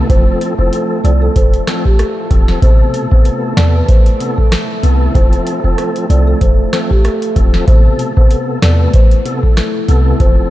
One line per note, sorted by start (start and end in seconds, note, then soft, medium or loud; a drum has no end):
0.00 7.64 A4 medium
0.09 0.34 F1 loud
0.09 0.55 F3 loud
0.09 2.60 A3 medium
0.09 0.55 C4 medium
0.09 2.60 F4 medium
0.09 0.55 A4 loud
0.09 0.35 C5 loud
0.09 kick loud
0.09 closed hi-hat medium
0.41 closed hi-hat medium
0.58 0.70 F1 medium
0.58 1.01 F3 medium
0.58 1.01 C4 medium
0.58 1.01 A4 medium
0.58 0.70 C5 medium
0.73 closed hi-hat medium
1.04 1.29 C2 loud
1.04 1.33 F3 medium
1.04 1.34 C4 medium
1.04 1.34 A4 medium
1.04 1.18 D5 medium
1.04 closed hi-hat medium
1.22 1.33 A4 medium
1.36 1.61 F1 loud
1.36 1.50 C5 medium
1.36 kick medium
1.36 closed hi-hat medium
1.54 closed hi-hat soft
1.67 1.86 F3 medium
1.67 1.86 C4 medium
1.67 1.86 A4 medium
1.67 cross-stick medium
1.67 snare loud
1.67 closed hi-hat medium
1.85 1.96 G4 medium
1.85 kick medium
1.99 2.46 A4 medium
1.99 cross-stick medium
1.99 closed hi-hat medium
2.31 2.56 E1 medium
2.31 2.60 F3 medium
2.31 2.60 C4 medium
2.31 2.60 A4 medium
2.31 kick loud
2.31 closed hi-hat medium
2.48 snare medium
2.62 2.87 A1 loud
2.62 3.08 B2 medium
2.62 3.07 C3 medium
2.62 5.12 A3 medium
2.62 5.12 E4 medium
2.62 3.08 A4 loud
2.62 2.87 C5 loud
2.62 kick loud
2.62 closed hi-hat medium
2.94 closed hi-hat medium
3.11 3.23 A1 medium
3.11 3.54 C3 medium
3.11 3.54 B3 medium
3.11 3.54 A4 medium
3.11 3.23 C5 medium
3.11 kick medium
3.25 closed hi-hat medium
3.57 3.82 E2 loud
3.57 3.86 C3 medium
3.57 3.86 B3 medium
3.57 3.87 A4 medium
3.57 3.71 D5 medium
3.57 cross-stick medium
3.57 snare loud
3.57 closed hi-hat medium
3.75 3.86 B4 medium
3.88 4.13 A1 loud
3.88 4.02 C5 medium
3.88 kick medium
3.88 closed hi-hat medium
4.06 closed hi-hat medium
4.20 4.38 C3 medium
4.20 4.39 B3 medium
4.20 4.39 A4 medium
4.20 closed hi-hat medium
4.38 4.49 A4 medium
4.38 kick medium
4.52 cross-stick medium
4.52 snare loud
4.52 closed hi-hat medium
4.83 5.08 C2 medium
4.83 5.12 C3 medium
4.83 5.13 B3 medium
4.83 5.13 A4 medium
4.83 closed hi-hat medium
5.14 5.40 F1 loud
5.14 5.60 F3 medium
5.14 7.65 A3 medium
5.14 5.60 C4 medium
5.14 7.65 F4 medium
5.14 5.60 A4 loud
5.14 5.39 C5 loud
5.14 kick loud
5.14 closed hi-hat medium
5.33 closed hi-hat medium
5.47 closed hi-hat medium
5.64 5.75 F1 loud
5.64 6.06 F3 medium
5.64 6.06 C4 medium
5.64 6.07 A4 medium
5.64 5.75 C5 medium
5.78 cross-stick medium
5.78 closed hi-hat medium
5.96 closed hi-hat medium
6.10 6.35 C2 loud
6.10 6.39 F3 medium
6.10 6.39 C4 medium
6.10 6.39 A4 medium
6.10 6.24 D5 medium
6.10 closed hi-hat medium
6.27 6.38 A4 medium
6.41 6.66 F1 loud
6.41 6.55 C5 medium
6.41 kick medium
6.41 closed hi-hat medium
6.73 6.91 F3 medium
6.73 6.91 C4 medium
6.73 6.91 A4 medium
6.73 cross-stick medium
6.73 snare loud
6.73 closed hi-hat medium
6.90 7.01 G4 medium
6.90 kick medium
7.04 7.51 A4 medium
7.04 cross-stick medium
7.04 closed hi-hat medium
7.22 closed hi-hat medium
7.36 7.61 E1 medium
7.36 7.65 F3 medium
7.36 7.65 C4 medium
7.36 7.65 A4 medium
7.36 kick loud
7.36 closed hi-hat medium
7.54 snare medium
7.67 7.92 A1 loud
7.67 8.13 B2 medium
7.67 8.12 C3 medium
7.67 10.18 A3 medium
7.67 10.18 E4 medium
7.67 8.13 A4 loud
7.67 10.50 A4 medium
7.67 7.92 C5 loud
7.67 kick loud
7.67 closed hi-hat medium
7.99 closed hi-hat medium
8.17 8.28 A1 medium
8.17 8.59 C3 medium
8.17 8.59 B3 medium
8.17 8.59 A4 medium
8.17 8.28 C5 medium
8.17 kick medium
8.31 closed hi-hat medium
8.62 8.87 E2 loud
8.62 8.92 C3 medium
8.62 8.92 B3 medium
8.62 8.92 A4 medium
8.62 8.76 D5 medium
8.62 cross-stick medium
8.62 snare loud
8.62 closed hi-hat medium
8.80 8.91 B4 medium
8.94 9.19 A1 loud
8.94 9.08 C5 medium
8.94 kick medium
8.94 closed hi-hat medium
9.11 closed hi-hat medium
9.25 9.44 C3 medium
9.25 9.44 B3 medium
9.25 9.44 A4 medium
9.25 closed hi-hat medium
9.43 9.54 A4 medium
9.43 kick medium
9.57 cross-stick medium
9.57 snare loud
9.57 closed hi-hat medium
9.88 10.13 C2 medium
9.88 10.18 C3 medium
9.88 10.18 B3 medium
9.88 10.18 A4 medium
9.88 closed hi-hat medium
10.20 10.45 F1 loud
10.20 10.50 F3 medium
10.20 10.50 A3 medium
10.20 10.50 C4 medium
10.20 10.50 F4 medium
10.20 10.50 A4 loud
10.20 10.45 C5 loud
10.20 kick loud
10.20 closed hi-hat medium